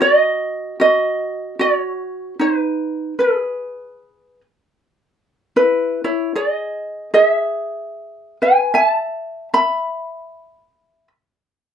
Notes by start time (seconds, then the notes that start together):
0.01 F#4 D#5
0.80 F#4 D#5
1.59 F#4 C#5
2.39 D#4 B4
3.19 G#4 B4
5.56 E4 B4
6.04 E4 C#5
6.35 G#4 D#5
7.14 G#4 D#5
7.25 E5
8.42 B4 G#5
8.74 E5 G#5
8.86 A5
9.54 E5 B5